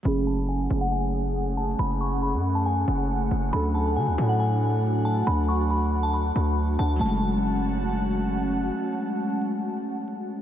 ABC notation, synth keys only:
X:1
M:4/4
L:1/8
Q:1/4=138
K:F#m
V:1 name="Synth keys"
[F,A,CG]8- | [F,A,CG]8 | [F,A,DA]8- | [F,A,DA]8 |
[F,G,A,C]8- | [F,G,A,C]8 |]